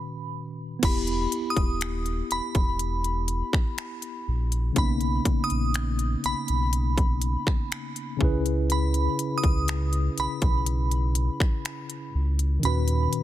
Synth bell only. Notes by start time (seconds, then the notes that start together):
Already playing: B5
0.85 B5
1.50 D#6
2.32 B5
4.78 B5
5.44 D#6
6.26 B5
8.72 B5
9.38 D#6
10.20 B5
12.65 B5